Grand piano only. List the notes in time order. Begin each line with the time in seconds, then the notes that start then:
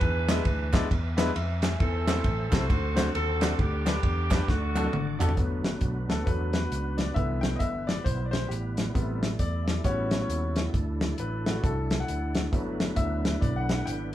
0.03 E3
0.28 G#3 B3 D4 E4 B4
0.73 G#3 B3 D4 E4 D5
1.17 G#3 B3 D4 E4 B4
1.35 E5
1.63 E5 G#5
1.80 E3
2.07 C4 E4 A4
2.51 C4 E4 A4
2.70 D3
2.95 A3 C4 D4 F#4 C5
3.40 A3 C4 D4 F#4 D5
3.58 D3
3.85 D4 G4 B4
4.30 D4 G4 B4
4.48 D3
4.75 D4 F#4 A4
5.19 D4 F#4 A4
5.36 F#3 A3 B3
6.09 A4
6.26 F#3 A3 B3 B4
6.53 B4
6.98 D5
7.14 D3 E3 B3 E5
7.41 G5
7.56 D#5 E5
7.87 D5
8.04 C5
8.26 D5
8.31 C5
8.49 G4
8.94 C3 G3 B3
9.40 D5
9.84 G3 B3 C#4 F#4 C#5
10.21 C#5
11.20 B4
11.45 A3 D4 F#4
11.64 A4
12.00 F#5
12.52 F#3 A3 B3
12.96 E5
13.41 D5
13.56 F#5
13.71 F#5
13.86 G5